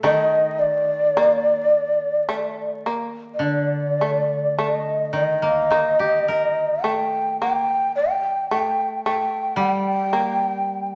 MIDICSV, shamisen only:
0, 0, Header, 1, 2, 480
1, 0, Start_track
1, 0, Tempo, 1100917
1, 19, Time_signature, 4, 2, 24, 8
1, 500, Tempo, 1138520
1, 2900, Tempo, 1092896
1, 4705, End_track
2, 0, Start_track
2, 0, Title_t, "Shamisen"
2, 0, Program_c, 0, 106
2, 18, Note_on_c, 0, 57, 69
2, 499, Note_off_c, 0, 57, 0
2, 509, Note_on_c, 0, 58, 65
2, 979, Note_off_c, 0, 58, 0
2, 981, Note_on_c, 0, 57, 60
2, 1219, Note_off_c, 0, 57, 0
2, 1223, Note_on_c, 0, 58, 49
2, 1699, Note_off_c, 0, 58, 0
2, 1708, Note_on_c, 0, 57, 45
2, 1944, Note_off_c, 0, 57, 0
2, 1949, Note_on_c, 0, 57, 57
2, 2424, Note_off_c, 0, 57, 0
2, 2426, Note_on_c, 0, 58, 56
2, 2898, Note_off_c, 0, 58, 0
2, 2900, Note_on_c, 0, 57, 60
2, 3145, Note_off_c, 0, 57, 0
2, 3153, Note_on_c, 0, 58, 51
2, 3633, Note_off_c, 0, 58, 0
2, 3635, Note_on_c, 0, 57, 50
2, 3870, Note_off_c, 0, 57, 0
2, 3876, Note_on_c, 0, 57, 65
2, 4343, Note_off_c, 0, 57, 0
2, 4344, Note_on_c, 0, 58, 57
2, 4705, Note_off_c, 0, 58, 0
2, 4705, End_track
0, 0, End_of_file